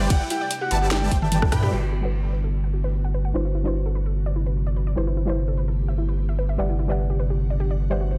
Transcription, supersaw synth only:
0.10 G3 G4 E5 F#5
0.71 G3 G4 B4 D5 E5 A5
1.11 G3 G4 B4 D5 E5 G5
1.52 G3 G4 B4 D5 E5 G5

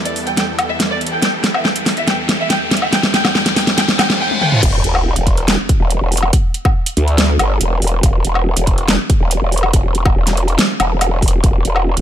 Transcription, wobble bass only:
4.63 E1
4.84 E1
5.16 E1
5.80 E1
6.01 E1
6.97 D2
7.39 G1
7.61 E1
7.82 E1
8.03 E1
8.25 E1
8.57 E1
9.20 E1
9.42 E1
9.73 E1
10.16 E1
10.80 E1
11.44 E1
11.65 E1
11.97 E1

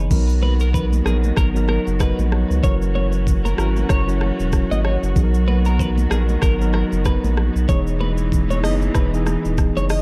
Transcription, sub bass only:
0.11 B1
1.05 A#1
1.37 G#1
1.87 F#1
2.19 A#1
2.50 C#2
2.64 F#1
3.58 G#1
3.90 F#1
4.40 E1
4.71 G#1
5.03 F#1
5.16 B1
6.11 A#1
6.43 G#1
6.92 F#1
7.24 A#1
7.55 B1
7.69 E1
8.63 F#1
8.95 E1
9.45 D#1
9.77 F#1

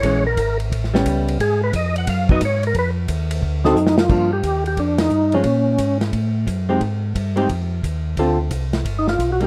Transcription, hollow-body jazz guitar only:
0.04 E3 G#3 C#4
0.94 G3 B3 C#4
2.30 F#3 B3 D#4
3.64 D3 C4 F#4 A4
4.09 F3 A#3 D4
5.34 F3 G#3 C#4
6.69 G#3 C4 D#4 G4
7.36 G#3 C4 D#4 G4
8.19 D3 C4 F4 A4
9.40 G3 A#3 D#4

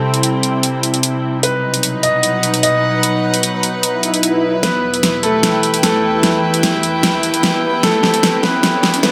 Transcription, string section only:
Already playing: C4 E4 G5
1.43 D#4
1.55 B4
2.15 F#5
4.63 E4
5.27 G5

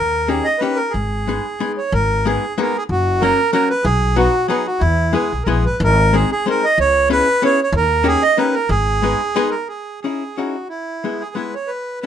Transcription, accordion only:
Already playing: A#4
0.28 G#4
0.44 D#5
0.58 B4
0.76 A#4
0.90 G#4
1.77 C#5
1.93 A#4
2.26 G#4
2.61 A#4
2.78 G#4
2.91 F#4
3.21 A#4
3.52 A#4
3.70 B4
3.84 G#4
4.17 F#4
4.48 G#4
4.67 F#4
4.79 E4
5.13 G#4
5.44 A#4
5.49 G#4
5.66 B4
5.84 A#4
6.15 G#4
6.32 G#4
6.50 A#4
6.65 D#5
6.80 C#5
7.12 B4
7.44 C#5
7.63 C#5
7.76 A#4
8.07 G#4
8.23 D#5
8.38 B4
8.54 A#4
8.70 G#4
9.50 A#4
9.68 G#4
10.01 G#4
10.37 F#4
10.69 E4
11.20 G#4
11.35 B4
11.54 C#5
11.67 B4
12.01 B4

